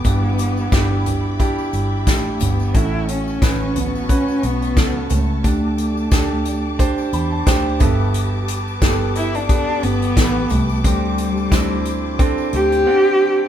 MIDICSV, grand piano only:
0, 0, Header, 1, 2, 480
1, 0, Start_track
1, 0, Tempo, 674916
1, 33, Time_signature, 4, 2, 24, 8
1, 9588, End_track
2, 0, Start_track
2, 0, Title_t, "Grand piano"
2, 0, Program_c, 0, 0
2, 0, Control_c, 0, 64, 127
2, 34, Note_on_c, 0, 62, 63
2, 35, Note_on_c, 0, 43, 59
2, 36, Note_on_c, 0, 64, 59
2, 38, Note_on_c, 0, 67, 65
2, 41, Control_c, 0, 64, 0
2, 181, Control_c, 0, 64, 127
2, 418, Note_off_c, 0, 62, 0
2, 419, Note_off_c, 0, 64, 0
2, 420, Note_off_c, 0, 67, 0
2, 511, Note_on_c, 0, 62, 81
2, 512, Note_on_c, 0, 64, 81
2, 515, Note_on_c, 0, 67, 90
2, 726, Note_off_c, 0, 43, 0
2, 897, Note_off_c, 0, 62, 0
2, 897, Note_off_c, 0, 64, 0
2, 899, Note_off_c, 0, 67, 0
2, 992, Note_on_c, 0, 62, 78
2, 993, Note_on_c, 0, 64, 77
2, 996, Note_on_c, 0, 67, 92
2, 1377, Note_off_c, 0, 62, 0
2, 1378, Note_off_c, 0, 64, 0
2, 1379, Note_off_c, 0, 67, 0
2, 1471, Note_on_c, 0, 62, 67
2, 1474, Note_on_c, 0, 64, 61
2, 1476, Note_on_c, 0, 67, 76
2, 1857, Note_off_c, 0, 62, 0
2, 1858, Note_off_c, 0, 64, 0
2, 1859, Note_off_c, 0, 67, 0
2, 1950, Note_on_c, 0, 61, 53
2, 1952, Note_on_c, 0, 45, 55
2, 1952, Note_on_c, 0, 66, 60
2, 1955, Note_on_c, 0, 69, 67
2, 1963, Control_c, 0, 64, 0
2, 2081, Control_c, 0, 64, 127
2, 2336, Note_off_c, 0, 61, 0
2, 2337, Note_off_c, 0, 66, 0
2, 2338, Note_off_c, 0, 69, 0
2, 2431, Note_on_c, 0, 61, 73
2, 2434, Note_on_c, 0, 66, 61
2, 2436, Note_on_c, 0, 71, 73
2, 2644, Note_off_c, 0, 45, 0
2, 2817, Note_off_c, 0, 61, 0
2, 2818, Note_off_c, 0, 66, 0
2, 2819, Note_off_c, 0, 71, 0
2, 2909, Note_on_c, 0, 61, 63
2, 2911, Note_on_c, 0, 66, 64
2, 2914, Note_on_c, 0, 71, 73
2, 3295, Note_off_c, 0, 61, 0
2, 3297, Note_off_c, 0, 66, 0
2, 3298, Note_off_c, 0, 71, 0
2, 3388, Note_on_c, 0, 61, 72
2, 3390, Note_on_c, 0, 66, 63
2, 3392, Note_on_c, 0, 69, 77
2, 3775, Note_off_c, 0, 61, 0
2, 3776, Note_off_c, 0, 66, 0
2, 3777, Note_off_c, 0, 69, 0
2, 3870, Note_on_c, 0, 62, 63
2, 3872, Note_on_c, 0, 50, 50
2, 3872, Note_on_c, 0, 67, 55
2, 3874, Note_on_c, 0, 69, 65
2, 3883, Control_c, 0, 64, 0
2, 3985, Control_c, 0, 64, 127
2, 4256, Note_off_c, 0, 62, 0
2, 4257, Note_off_c, 0, 67, 0
2, 4258, Note_off_c, 0, 69, 0
2, 4350, Note_on_c, 0, 62, 85
2, 4351, Note_on_c, 0, 67, 80
2, 4353, Note_on_c, 0, 69, 87
2, 4564, Note_off_c, 0, 50, 0
2, 4736, Note_off_c, 0, 62, 0
2, 4736, Note_off_c, 0, 67, 0
2, 4737, Note_off_c, 0, 69, 0
2, 4828, Note_on_c, 0, 62, 86
2, 4830, Note_on_c, 0, 67, 81
2, 4832, Note_on_c, 0, 72, 98
2, 5074, Note_on_c, 0, 83, 57
2, 5198, Note_off_c, 0, 83, 0
2, 5206, Note_on_c, 0, 81, 72
2, 5215, Note_off_c, 0, 62, 0
2, 5216, Note_off_c, 0, 67, 0
2, 5217, Note_off_c, 0, 72, 0
2, 5305, Note_off_c, 0, 81, 0
2, 5309, Note_on_c, 0, 62, 87
2, 5310, Note_on_c, 0, 67, 84
2, 5310, Note_on_c, 0, 79, 70
2, 5312, Note_on_c, 0, 72, 97
2, 5535, Note_off_c, 0, 79, 0
2, 5539, Note_off_c, 0, 67, 0
2, 5547, Note_on_c, 0, 59, 83
2, 5549, Note_on_c, 0, 67, 77
2, 5550, Note_on_c, 0, 43, 66
2, 5550, Note_on_c, 0, 76, 67
2, 5551, Note_off_c, 0, 62, 0
2, 5552, Note_off_c, 0, 72, 0
2, 5552, Note_on_c, 0, 69, 92
2, 5563, Control_c, 0, 64, 0
2, 5700, Control_c, 0, 64, 127
2, 5775, Note_off_c, 0, 76, 0
2, 6138, Note_off_c, 0, 59, 0
2, 6139, Note_off_c, 0, 67, 0
2, 6140, Note_off_c, 0, 69, 0
2, 6243, Note_off_c, 0, 43, 0
2, 6270, Note_on_c, 0, 59, 85
2, 6272, Note_on_c, 0, 67, 78
2, 6273, Note_on_c, 0, 69, 102
2, 6656, Note_off_c, 0, 59, 0
2, 6656, Note_off_c, 0, 67, 0
2, 6657, Note_off_c, 0, 69, 0
2, 6753, Note_on_c, 0, 59, 73
2, 6755, Note_on_c, 0, 67, 67
2, 6756, Note_on_c, 0, 69, 83
2, 7137, Note_off_c, 0, 59, 0
2, 7138, Note_off_c, 0, 67, 0
2, 7139, Note_off_c, 0, 69, 0
2, 7231, Note_on_c, 0, 59, 73
2, 7231, Note_on_c, 0, 67, 68
2, 7234, Note_on_c, 0, 69, 65
2, 7282, Note_on_c, 0, 71, 76
2, 7285, Note_off_c, 0, 69, 0
2, 7616, Note_off_c, 0, 59, 0
2, 7616, Note_off_c, 0, 67, 0
2, 7642, Note_off_c, 0, 71, 0
2, 7712, Note_on_c, 0, 60, 63
2, 7713, Note_on_c, 0, 62, 59
2, 7714, Note_on_c, 0, 50, 54
2, 7716, Note_on_c, 0, 67, 73
2, 7721, Control_c, 0, 64, 0
2, 7832, Control_c, 0, 64, 127
2, 8097, Note_off_c, 0, 60, 0
2, 8097, Note_off_c, 0, 62, 0
2, 8099, Note_off_c, 0, 67, 0
2, 8188, Note_on_c, 0, 60, 75
2, 8190, Note_on_c, 0, 62, 73
2, 8191, Note_on_c, 0, 64, 88
2, 8405, Note_off_c, 0, 50, 0
2, 8575, Note_off_c, 0, 60, 0
2, 8576, Note_off_c, 0, 62, 0
2, 8576, Note_off_c, 0, 64, 0
2, 8670, Note_on_c, 0, 60, 95
2, 8671, Note_on_c, 0, 62, 80
2, 8674, Note_on_c, 0, 69, 94
2, 9055, Note_off_c, 0, 60, 0
2, 9056, Note_off_c, 0, 62, 0
2, 9057, Note_off_c, 0, 69, 0
2, 9150, Note_on_c, 0, 60, 90
2, 9153, Note_on_c, 0, 62, 87
2, 9155, Note_on_c, 0, 78, 98
2, 9536, Note_off_c, 0, 60, 0
2, 9537, Note_off_c, 0, 62, 0
2, 9538, Note_off_c, 0, 78, 0
2, 9588, End_track
0, 0, End_of_file